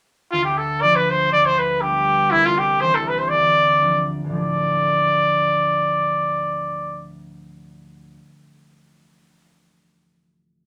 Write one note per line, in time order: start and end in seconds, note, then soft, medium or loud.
0.32 1.31 D2 medium
0.32 0.44 F4 medium
0.44 0.59 G4 medium
0.58 0.83 A4 medium
0.82 1.37 F3 soft
0.82 3.82 A3 soft
0.82 1.83 D4 soft
0.82 0.97 D5 medium
0.96 1.12 B4 medium
1.10 1.32 C5 medium
1.32 2.37 D2 medium
1.32 1.47 D5 medium
1.46 1.60 C5 medium
1.58 1.83 B4 medium
1.81 2.37 G3 soft
1.81 2.38 B3 soft
1.81 2.82 D4 soft
1.81 2.32 G4 medium
2.31 3.37 C2 medium
2.31 2.47 E4 loud
2.46 2.60 F4 medium
2.58 2.82 G4 medium
2.81 3.37 E3 soft
2.81 5.82 C4 soft
2.81 3.82 D4 soft
2.81 2.96 C5 medium
2.95 3.10 A4 medium
3.08 3.20 B4 medium
3.19 3.30 C5 medium
3.29 4.23 D2 medium
3.29 4.08 D5 medium
3.81 4.29 F3 soft
3.81 4.32 A3 soft
3.81 4.35 D4 soft
4.24 8.14 D2 soft
4.24 8.17 A2 soft
4.30 8.12 F3 soft
4.30 7.77 A3 soft
4.30 7.06 D5 medium
4.35 7.78 D4 soft
4.35 7.80 A4 soft